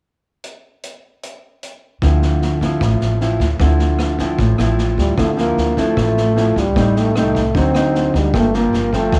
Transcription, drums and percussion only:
0.44 closed hi-hat soft
0.83 closed hi-hat soft
1.23 closed hi-hat soft
1.63 closed hi-hat soft
2.02 kick soft
2.02 cross-stick soft
2.02 snare soft
2.22 snare soft
2.42 snare soft
2.61 kick soft
2.61 snare soft
2.81 kick medium
2.81 cross-stick soft
2.81 snare soft
3.01 snare soft
3.21 snare soft
3.40 kick soft
3.40 snare soft
3.59 kick medium
3.59 cross-stick soft
3.59 snare soft
3.79 snare soft
3.99 cross-stick soft
3.99 snare soft
4.18 kick soft
4.18 snare soft
4.38 kick medium
4.38 snare soft
4.58 cross-stick soft
4.58 snare soft
4.78 snare soft
4.98 kick soft
4.98 snare soft
5.18 kick soft
5.18 cross-stick medium
5.18 snare soft
5.38 snare soft
5.57 snare soft
5.77 kick soft
5.77 snare soft
5.97 kick soft
5.97 cross-stick medium
5.97 snare soft
6.17 snare soft
6.36 snare soft
6.56 kick soft
6.56 snare soft
6.76 kick medium
6.76 cross-stick medium
6.76 snare soft
6.96 snare soft
7.16 cross-stick soft
7.16 snare soft
7.35 kick soft
7.35 snare soft
7.55 kick medium
7.55 snare soft
7.75 cross-stick medium
7.75 snare soft
7.95 snare soft
8.14 kick soft
8.14 snare soft
8.34 kick medium
8.34 cross-stick medium
8.34 snare soft
8.54 snare soft
8.73 snare soft
8.93 kick soft
8.93 snare soft
9.12 kick soft
9.12 cross-stick medium
9.12 snare soft

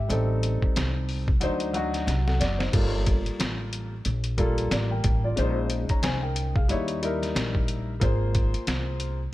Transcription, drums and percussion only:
0.10 closed hi-hat medium
0.43 closed hi-hat medium
0.62 kick medium
0.76 snare loud
0.76 closed hi-hat medium
1.09 open hi-hat medium
1.28 kick loud
1.41 closed hi-hat medium
1.60 closed hi-hat medium
1.74 closed hi-hat medium
1.94 snare soft
1.94 closed hi-hat medium
2.08 snare medium
2.08 closed hi-hat medium
2.28 snare medium
2.41 snare medium
2.41 closed hi-hat medium
2.60 snare medium
2.73 kick loud
2.73 closed hi-hat medium
2.73 crash medium
3.06 kick medium
3.06 closed hi-hat medium
3.26 closed hi-hat soft
3.40 snare loud
3.40 closed hi-hat medium
3.73 closed hi-hat medium
4.05 closed hi-hat medium
4.24 closed hi-hat medium
4.38 kick medium
4.38 closed hi-hat medium
4.58 closed hi-hat medium
4.71 snare loud
4.71 closed hi-hat medium
5.04 kick loud
5.04 closed hi-hat medium
5.37 closed hi-hat medium
5.70 closed hi-hat medium
5.89 kick medium
5.89 closed hi-hat soft
6.03 snare loud
6.03 closed hi-hat medium
6.36 closed hi-hat medium
6.56 kick loud
6.69 closed hi-hat medium
6.88 closed hi-hat medium
7.03 closed hi-hat medium
7.23 snare soft
7.23 closed hi-hat medium
7.36 snare loud
7.36 closed hi-hat medium
7.55 kick medium
7.68 closed hi-hat medium
8.01 kick loud
8.01 closed hi-hat medium
8.35 kick loud
8.35 closed hi-hat medium
8.54 closed hi-hat soft
8.67 snare loud
8.67 closed hi-hat medium
9.00 closed hi-hat medium

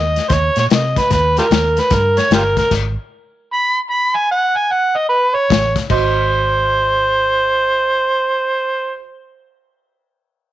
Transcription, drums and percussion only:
0.16 snare soft
0.16 closed hi-hat medium
0.30 kick loud
0.30 snare soft
0.30 closed hi-hat medium
0.56 snare soft
0.56 closed hi-hat medium
0.70 snare loud
0.70 closed hi-hat medium
0.96 kick medium
0.96 snare soft
0.96 closed hi-hat medium
1.10 kick medium
1.10 snare soft
1.10 closed hi-hat medium
1.37 snare soft
1.37 closed hi-hat medium
1.51 snare loud
1.51 closed hi-hat medium
1.77 snare soft
1.77 closed hi-hat medium
1.90 kick loud
1.90 snare soft
1.90 closed hi-hat medium
2.17 snare soft
2.17 closed hi-hat medium
2.31 snare loud
2.31 closed hi-hat medium
2.57 kick medium
2.57 snare soft
2.57 closed hi-hat medium
2.71 kick loud
2.71 snare soft
2.71 closed hi-hat medium
2.71 crash medium
5.50 kick medium
5.50 snare loud
5.50 closed hi-hat medium
5.76 kick medium
5.76 snare soft
5.76 closed hi-hat medium
5.90 kick medium
5.90 crash medium

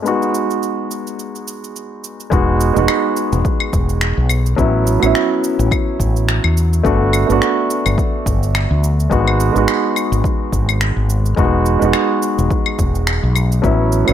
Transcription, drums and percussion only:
0.06 shaker soft
0.22 shaker soft
0.35 shaker medium
0.50 shaker soft
0.63 shaker soft
0.91 shaker medium
1.07 shaker soft
1.19 shaker soft
1.35 shaker soft
1.48 shaker medium
1.64 shaker soft
1.76 shaker soft
2.04 shaker medium
2.20 shaker soft
2.32 kick loud
2.32 shaker soft
2.61 shaker medium
2.77 shaker soft
2.88 finger snap loud
2.88 claves medium
2.88 shaker soft
3.17 shaker medium
3.33 shaker soft
3.45 kick loud
3.45 shaker soft
3.60 claves medium
3.73 kick loud
3.73 shaker medium
3.89 shaker soft
4.01 finger snap loud
4.01 shaker soft
4.29 claves medium
4.29 shaker medium
4.46 shaker soft
4.58 kick loud
4.58 shaker soft
4.87 shaker medium
5.03 claves medium
5.03 shaker soft
5.15 finger snap loud
5.15 shaker soft
5.44 shaker medium
5.60 shaker soft
5.71 kick loud
5.71 claves medium
5.71 shaker soft
6.00 kick medium
6.00 shaker medium
6.16 shaker soft
6.29 finger snap loud
6.29 shaker soft
6.44 claves medium
6.57 shaker medium
6.73 shaker soft
6.85 kick loud
6.85 shaker soft
7.13 claves medium
7.13 shaker medium
7.30 shaker soft
7.42 finger snap loud
7.42 shaker soft
7.70 shaker medium
7.86 claves medium
7.86 shaker soft
7.98 kick loud
7.98 shaker soft
8.26 kick loud
8.26 shaker medium
8.43 shaker soft
8.55 finger snap loud
8.55 claves medium
8.55 shaker soft
8.84 shaker medium
9.00 shaker medium
9.11 kick loud
9.11 shaker soft
9.28 claves medium
9.40 shaker medium
9.56 shaker soft
9.68 finger snap loud
9.68 shaker soft
9.96 claves medium
9.96 shaker medium
10.13 shaker soft
10.24 kick loud
10.24 shaker soft
10.53 kick medium
10.53 shaker medium
10.69 claves medium
10.69 shaker soft
10.81 finger snap loud
10.81 shaker soft
11.10 shaker medium
11.26 shaker soft
11.37 kick loud
11.37 shaker soft
11.66 shaker medium
11.82 shaker soft
11.93 finger snap medium
11.93 claves medium
11.93 shaker soft
12.23 shaker medium
12.39 shaker soft
12.51 kick loud
12.51 shaker soft
12.66 claves medium
12.79 kick loud
12.79 shaker medium
12.95 shaker soft
13.07 finger snap loud
13.07 shaker soft
13.36 claves medium
13.36 shaker medium
13.52 shaker soft
13.64 kick loud
13.64 shaker soft
13.92 shaker medium
14.08 claves medium
14.08 shaker soft

